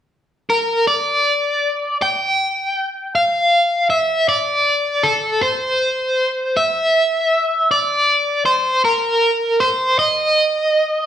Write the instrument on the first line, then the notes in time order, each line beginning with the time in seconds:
overdriven electric guitar
0.50 A#4
0.87 D5
2.02 G5
3.15 F5
3.90 E5
4.29 D5
5.03 A4
5.42 C5
6.57 E5
7.71 D5
8.45 C5
8.85 A#4
9.60 C5
9.99 D#5